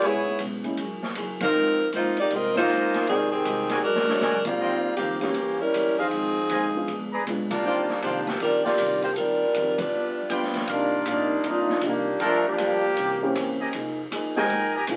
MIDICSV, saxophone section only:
0, 0, Header, 1, 2, 480
1, 0, Start_track
1, 0, Key_signature, -3, "major"
1, 0, Tempo, 380952
1, 33, Time_signature, 4, 2, 24, 8
1, 13468, Key_signature, -3, "minor"
1, 18857, End_track
2, 0, Start_track
2, 0, Title_t, "Saxophone section"
2, 0, Program_c, 0, 65
2, 85, Note_on_c, 0, 73, 91
2, 89, Note_on_c, 0, 59, 67
2, 89, Note_on_c, 0, 68, 73
2, 93, Note_on_c, 0, 64, 79
2, 538, Note_off_c, 0, 73, 0
2, 541, Note_off_c, 0, 59, 0
2, 541, Note_off_c, 0, 68, 0
2, 543, Note_off_c, 0, 64, 0
2, 1806, Note_on_c, 0, 60, 79
2, 1806, Note_on_c, 0, 63, 84
2, 1808, Note_on_c, 0, 53, 76
2, 1809, Note_on_c, 0, 70, 92
2, 2400, Note_off_c, 0, 60, 0
2, 2400, Note_off_c, 0, 63, 0
2, 2401, Note_off_c, 0, 53, 0
2, 2401, Note_off_c, 0, 70, 0
2, 2460, Note_on_c, 0, 63, 80
2, 2461, Note_on_c, 0, 65, 76
2, 2463, Note_on_c, 0, 58, 75
2, 2464, Note_on_c, 0, 72, 87
2, 2735, Note_off_c, 0, 63, 0
2, 2735, Note_off_c, 0, 65, 0
2, 2736, Note_off_c, 0, 58, 0
2, 2737, Note_off_c, 0, 72, 0
2, 2770, Note_on_c, 0, 63, 76
2, 2771, Note_on_c, 0, 74, 80
2, 2775, Note_on_c, 0, 67, 75
2, 2780, Note_on_c, 0, 58, 68
2, 2916, Note_off_c, 0, 63, 0
2, 2916, Note_off_c, 0, 74, 0
2, 2918, Note_off_c, 0, 67, 0
2, 2921, Note_off_c, 0, 58, 0
2, 2947, Note_on_c, 0, 75, 91
2, 2952, Note_on_c, 0, 60, 77
2, 2954, Note_on_c, 0, 65, 75
2, 2954, Note_on_c, 0, 70, 76
2, 3235, Note_off_c, 0, 65, 0
2, 3239, Note_off_c, 0, 75, 0
2, 3241, Note_off_c, 0, 60, 0
2, 3242, Note_off_c, 0, 70, 0
2, 3244, Note_on_c, 0, 72, 104
2, 3250, Note_on_c, 0, 65, 83
2, 3253, Note_on_c, 0, 63, 84
2, 3256, Note_on_c, 0, 58, 89
2, 3839, Note_off_c, 0, 72, 0
2, 3842, Note_off_c, 0, 65, 0
2, 3844, Note_off_c, 0, 63, 0
2, 3845, Note_off_c, 0, 58, 0
2, 3876, Note_on_c, 0, 60, 71
2, 3882, Note_on_c, 0, 51, 80
2, 3884, Note_on_c, 0, 55, 70
2, 3888, Note_on_c, 0, 68, 88
2, 4162, Note_off_c, 0, 60, 0
2, 4165, Note_off_c, 0, 51, 0
2, 4165, Note_off_c, 0, 68, 0
2, 4166, Note_off_c, 0, 55, 0
2, 4180, Note_on_c, 0, 68, 90
2, 4186, Note_on_c, 0, 67, 77
2, 4187, Note_on_c, 0, 60, 81
2, 4188, Note_on_c, 0, 51, 79
2, 4786, Note_off_c, 0, 68, 0
2, 4789, Note_off_c, 0, 67, 0
2, 4790, Note_off_c, 0, 51, 0
2, 4790, Note_off_c, 0, 60, 0
2, 4832, Note_on_c, 0, 62, 71
2, 4839, Note_on_c, 0, 56, 74
2, 4839, Note_on_c, 0, 66, 76
2, 4840, Note_on_c, 0, 70, 91
2, 5571, Note_off_c, 0, 62, 0
2, 5574, Note_off_c, 0, 56, 0
2, 5574, Note_off_c, 0, 66, 0
2, 5575, Note_off_c, 0, 70, 0
2, 5619, Note_on_c, 0, 55, 76
2, 5621, Note_on_c, 0, 58, 73
2, 5622, Note_on_c, 0, 60, 80
2, 5624, Note_on_c, 0, 65, 89
2, 6245, Note_off_c, 0, 60, 0
2, 6253, Note_off_c, 0, 58, 0
2, 6259, Note_on_c, 0, 53, 70
2, 6260, Note_on_c, 0, 60, 68
2, 6260, Note_on_c, 0, 67, 84
2, 6269, Note_on_c, 0, 58, 69
2, 6271, Note_off_c, 0, 55, 0
2, 6273, Note_off_c, 0, 65, 0
2, 6553, Note_off_c, 0, 53, 0
2, 6553, Note_off_c, 0, 60, 0
2, 6553, Note_off_c, 0, 67, 0
2, 6557, Note_off_c, 0, 58, 0
2, 6563, Note_on_c, 0, 61, 64
2, 6570, Note_on_c, 0, 58, 72
2, 6573, Note_on_c, 0, 52, 70
2, 6574, Note_on_c, 0, 67, 80
2, 7017, Note_off_c, 0, 61, 0
2, 7021, Note_off_c, 0, 58, 0
2, 7023, Note_off_c, 0, 52, 0
2, 7023, Note_off_c, 0, 67, 0
2, 7057, Note_on_c, 0, 70, 95
2, 7059, Note_on_c, 0, 55, 87
2, 7061, Note_on_c, 0, 61, 77
2, 7062, Note_on_c, 0, 64, 81
2, 7533, Note_on_c, 0, 63, 73
2, 7538, Note_on_c, 0, 53, 81
2, 7539, Note_off_c, 0, 70, 0
2, 7539, Note_on_c, 0, 68, 88
2, 7540, Note_off_c, 0, 55, 0
2, 7540, Note_off_c, 0, 61, 0
2, 7541, Note_off_c, 0, 64, 0
2, 7549, Note_on_c, 0, 60, 79
2, 8617, Note_off_c, 0, 63, 0
2, 8625, Note_off_c, 0, 60, 0
2, 9027, Note_off_c, 0, 53, 0
2, 9028, Note_off_c, 0, 68, 0
2, 9461, Note_on_c, 0, 62, 78
2, 9463, Note_on_c, 0, 55, 72
2, 9465, Note_on_c, 0, 65, 82
2, 9471, Note_on_c, 0, 58, 69
2, 10065, Note_off_c, 0, 62, 0
2, 10066, Note_off_c, 0, 55, 0
2, 10068, Note_off_c, 0, 65, 0
2, 10071, Note_off_c, 0, 58, 0
2, 10111, Note_on_c, 0, 58, 68
2, 10114, Note_on_c, 0, 62, 70
2, 10118, Note_on_c, 0, 67, 86
2, 10119, Note_on_c, 0, 53, 68
2, 10419, Note_off_c, 0, 58, 0
2, 10421, Note_off_c, 0, 62, 0
2, 10423, Note_off_c, 0, 53, 0
2, 10423, Note_off_c, 0, 67, 0
2, 10442, Note_on_c, 0, 53, 60
2, 10442, Note_on_c, 0, 62, 60
2, 10442, Note_on_c, 0, 67, 62
2, 10447, Note_on_c, 0, 58, 53
2, 10590, Note_off_c, 0, 53, 0
2, 10590, Note_off_c, 0, 62, 0
2, 10590, Note_off_c, 0, 67, 0
2, 10593, Note_off_c, 0, 58, 0
2, 10605, Note_on_c, 0, 55, 75
2, 10608, Note_on_c, 0, 70, 74
2, 10610, Note_on_c, 0, 65, 74
2, 10613, Note_on_c, 0, 62, 66
2, 10885, Note_off_c, 0, 55, 0
2, 10887, Note_off_c, 0, 70, 0
2, 10888, Note_off_c, 0, 65, 0
2, 10890, Note_off_c, 0, 62, 0
2, 10896, Note_on_c, 0, 74, 86
2, 10897, Note_on_c, 0, 67, 87
2, 10898, Note_on_c, 0, 58, 81
2, 10907, Note_on_c, 0, 65, 80
2, 11344, Note_off_c, 0, 67, 0
2, 11344, Note_off_c, 0, 74, 0
2, 11345, Note_off_c, 0, 58, 0
2, 11349, Note_off_c, 0, 65, 0
2, 11384, Note_on_c, 0, 58, 72
2, 11388, Note_on_c, 0, 72, 83
2, 11390, Note_on_c, 0, 65, 65
2, 11394, Note_on_c, 0, 67, 73
2, 11482, Note_off_c, 0, 58, 0
2, 11484, Note_off_c, 0, 72, 0
2, 11485, Note_off_c, 0, 65, 0
2, 11487, Note_off_c, 0, 67, 0
2, 11519, Note_on_c, 0, 69, 70
2, 11554, Note_on_c, 0, 62, 68
2, 11554, Note_on_c, 0, 70, 87
2, 11556, Note_on_c, 0, 65, 65
2, 11557, Note_on_c, 0, 55, 70
2, 11565, Note_off_c, 0, 69, 0
2, 12333, Note_off_c, 0, 62, 0
2, 12336, Note_off_c, 0, 55, 0
2, 12340, Note_off_c, 0, 70, 0
2, 12340, Note_on_c, 0, 71, 77
2, 12341, Note_off_c, 0, 65, 0
2, 12348, Note_on_c, 0, 62, 57
2, 12351, Note_on_c, 0, 55, 60
2, 12355, Note_on_c, 0, 65, 64
2, 12990, Note_off_c, 0, 71, 0
2, 12994, Note_off_c, 0, 62, 0
2, 12995, Note_off_c, 0, 55, 0
2, 12997, Note_off_c, 0, 65, 0
2, 18857, End_track
0, 0, End_of_file